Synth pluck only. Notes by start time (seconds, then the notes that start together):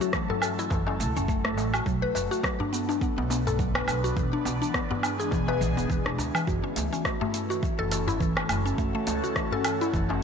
0.01 F#4
0.14 E3
0.30 A4
0.43 A4
0.59 E4
0.71 E3
0.88 C#4
1.00 A3
1.17 C#4
1.29 A3
1.45 A3
1.58 A3
1.74 F#4
1.87 F#3
2.02 B4
2.15 B4
2.31 F#4
2.44 F#3
2.60 D4
2.73 B3
2.89 D4
3.02 B3
3.18 B3
3.31 B3
3.47 A4
3.59 F#3
3.76 B4
3.88 B4
4.04 F#4
4.17 E3
4.33 D4
4.45 B3
4.62 D4
4.74 B3
4.91 B3
5.03 B3
5.20 G#4
5.32 E3
5.48 B4
5.61 E3
5.77 B3
5.90 E3
6.06 D4
6.18 D4
6.35 E3
6.47 E3
6.64 C#4
6.76 A3
6.93 C#4
7.05 A3
7.21 A3
7.34 A3
7.50 F#4
7.63 E3
7.79 A4
7.92 A4
8.08 E4
8.21 E3
8.37 C#4
8.49 A3
8.66 C#4
8.78 A3
8.95 A3
9.07 A3
9.24 F#4
9.36 E3
9.52 A4
9.65 A4
9.81 E4
9.94 E3
10.10 C#4